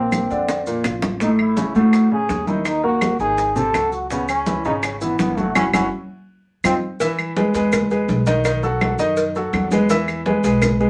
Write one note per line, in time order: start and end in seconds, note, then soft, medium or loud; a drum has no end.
0.00 0.24 A#1 medium
0.00 0.24 A#3 medium
0.00 0.63 C4 medium
0.00 0.24 A#4 medium
0.12 high bongo medium
0.12 high conga medium
0.12 claves medium
0.12 maracas medium
0.30 0.81 F2 medium
0.30 0.60 D3 medium
0.30 0.61 D4 medium
0.30 high conga soft
0.30 maracas soft
0.48 low bongo medium
0.48 high conga soft
0.48 maracas medium
0.67 0.82 A#2 medium
0.67 0.82 A#3 medium
0.67 high conga soft
0.67 maracas medium
0.84 1.69 A1 medium
0.84 1.15 F3 medium
0.84 1.15 F4 medium
0.84 low bongo medium
0.84 high conga soft
0.84 claves medium
0.84 maracas medium
1.02 low bongo loud
1.02 high conga medium
1.02 maracas soft
1.20 1.51 A2 medium
1.20 1.51 A3 medium
1.20 1.30 D#4 medium
1.20 high bongo medium
1.20 high conga soft
1.20 maracas medium
1.39 1.73 E4 loud
1.39 high conga soft
1.39 claves medium
1.57 1.72 C#3 medium
1.57 1.72 C#4 medium
1.57 high bongo medium
1.57 high conga medium
1.57 maracas medium
1.75 2.25 A2 medium
1.75 2.05 A2 medium
1.75 2.05 A3 medium
1.75 2.09 F#4 loud
1.75 high conga soft
1.75 maracas soft
1.93 high bongo medium
1.93 high conga soft
1.93 claves medium
1.93 maracas medium
2.11 2.41 C#3 medium
2.11 2.41 C#4 medium
2.11 2.46 G#4 loud
2.11 high conga soft
2.29 3.14 D#2 medium
2.29 high bongo medium
2.29 low bongo medium
2.29 high conga medium
2.29 maracas medium
2.47 2.77 D#3 medium
2.47 2.77 D#4 medium
2.47 2.68 E4 medium
2.47 high conga medium
2.47 maracas soft
2.65 2.84 D#4 loud
2.65 high bongo medium
2.65 high conga soft
2.65 claves medium
2.65 maracas medium
2.83 3.13 A#3 medium
2.83 3.18 F#4 loud
2.83 3.14 A#4 medium
2.83 high conga soft
3.01 high bongo medium
3.01 high conga loud
3.01 claves medium
3.01 maracas medium
3.19 3.70 G#1 medium
3.19 3.50 D#3 medium
3.19 3.50 D#4 medium
3.19 3.58 G#4 loud
3.19 high bongo soft
3.19 high conga soft
3.19 maracas soft
3.38 high bongo medium
3.38 high conga soft
3.38 maracas medium
3.56 3.71 C3 medium
3.56 3.71 C4 medium
3.56 3.93 A4 loud
3.56 high bongo soft
3.56 high conga soft
3.56 maracas soft
3.74 4.59 C#2 medium
3.74 4.04 F#3 medium
3.74 4.05 F#4 medium
3.74 high bongo medium
3.74 low bongo medium
3.74 high conga soft
3.74 claves medium
3.74 maracas medium
3.92 4.10 F#4 medium
3.92 high bongo soft
3.92 maracas soft
4.10 4.41 C#3 medium
4.10 4.28 B3 medium
4.10 4.41 C#4 medium
4.10 high bongo medium
4.10 high conga soft
4.10 maracas medium
4.28 4.63 C#4 loud
4.28 high conga soft
4.28 claves medium
4.28 maracas medium
4.46 4.62 E3 medium
4.46 4.62 E4 medium
4.46 high bongo medium
4.46 high conga medium
4.46 maracas medium
4.65 5.15 G#1 medium
4.65 4.95 C#3 medium
4.65 4.95 C#4 medium
4.65 4.74 D#4 medium
4.65 high conga soft
4.65 maracas soft
4.83 4.92 C#4 medium
4.83 high bongo medium
4.83 high conga soft
4.83 claves medium
4.83 maracas medium
5.01 5.31 E3 medium
5.01 5.19 B3 medium
5.01 5.31 E4 medium
5.01 high conga soft
5.01 maracas medium
5.19 5.53 F#1 medium
5.19 5.39 B3 loud
5.19 high bongo medium
5.19 low bongo medium
5.19 high conga medium
5.19 maracas medium
5.38 5.53 F#3 medium
5.38 5.55 A3 medium
5.38 5.53 F#4 medium
5.38 high conga medium
5.38 maracas soft
5.55 5.69 F#1 medium
5.55 5.67 C#4 medium
5.55 5.64 C#4 loud
5.55 5.67 E4 medium
5.55 5.67 F#4 medium
5.55 low bongo medium
5.55 high conga loud
5.55 claves loud
5.55 maracas medium
5.73 5.87 F#1 medium
5.73 5.85 C#4 loud
5.73 5.83 C#4 medium
5.73 5.85 E4 loud
5.73 5.85 F#4 loud
5.73 low bongo medium
5.73 high conga loud
5.73 claves loud
5.73 maracas medium
6.64 6.78 F2 medium
6.64 6.76 C4 medium
6.64 6.74 C4 medium
6.64 6.76 D#4 medium
6.64 6.76 F4 medium
6.64 low bongo medium
6.64 high conga loud
6.64 claves medium
6.64 maracas loud
7.00 7.30 E3 medium
7.00 7.30 E4 medium
7.00 7.30 E5 medium
7.00 cowbell loud
7.00 high conga soft
7.00 maracas medium
7.19 high conga soft
7.19 claves medium
7.19 maracas soft
7.36 7.51 G#3 medium
7.36 7.52 G#4 medium
7.36 7.52 B4 medium
7.36 cowbell medium
7.36 high conga medium
7.36 maracas soft
7.54 8.05 E2 medium
7.54 7.84 G#3 medium
7.54 7.84 G#4 medium
7.54 7.85 B4 medium
7.54 cowbell medium
7.54 maracas medium
7.72 cowbell loud
7.72 high conga soft
7.72 low conga medium
7.72 claves medium
7.72 maracas medium
7.91 8.21 G#3 medium
7.91 8.21 G#4 medium
7.91 8.21 B4 medium
7.91 high conga soft
7.91 maracas soft
8.08 8.93 B1 medium
8.08 cowbell medium
8.08 high conga medium
8.08 maracas soft
8.26 8.42 D#3 medium
8.26 8.42 D#4 medium
8.26 8.42 D#5 medium
8.26 cowbell medium
8.26 high conga medium
8.26 maracas medium
8.45 8.60 D#3 medium
8.45 8.60 D#4 medium
8.45 8.60 D#5 medium
8.45 cowbell loud
8.45 high conga soft
8.45 claves medium
8.45 maracas medium
8.63 8.93 F#3 medium
8.63 8.93 F#4 medium
8.63 8.93 A4 medium
8.63 high conga soft
8.63 maracas soft
8.81 cowbell medium
8.81 high conga medium
8.81 claves medium
8.81 maracas soft
8.99 9.49 F#2 loud
8.99 9.29 D#3 medium
8.99 9.29 D#4 medium
8.99 9.29 D#5 loud
8.99 high conga soft
8.99 maracas medium
9.17 cowbell loud
9.17 high conga soft
9.17 maracas medium
9.35 9.65 F#3 medium
9.35 9.66 F#4 medium
9.35 9.66 A4 medium
9.35 high conga soft
9.35 maracas soft
9.53 10.38 E2 loud
9.53 cowbell medium
9.53 high conga medium
9.53 claves medium
9.53 maracas soft
9.71 9.87 G#3 medium
9.71 9.87 G#4 medium
9.71 9.87 B4 medium
9.71 cowbell medium
9.71 high conga medium
9.71 maracas medium
9.89 10.19 E3 medium
9.89 10.20 E4 medium
9.89 10.20 E5 medium
9.89 cowbell loud
9.89 high conga soft
9.89 maracas medium
10.08 high conga soft
10.08 claves medium
10.08 maracas soft
10.26 10.41 G#3 medium
10.26 10.41 G#4 medium
10.26 10.41 B4 medium
10.26 cowbell medium
10.26 high conga medium
10.26 maracas soft
10.44 10.90 B1 loud
10.44 10.74 G#3 medium
10.44 10.74 G#4 medium
10.44 10.74 B4 medium
10.44 cowbell medium
10.44 maracas medium
10.62 cowbell loud
10.62 high conga soft
10.62 low conga medium
10.62 claves medium
10.62 maracas medium
10.80 10.90 G#3 medium
10.80 10.90 G#4 medium
10.80 10.90 B4 medium
10.80 high conga soft
10.80 low conga medium
10.80 maracas soft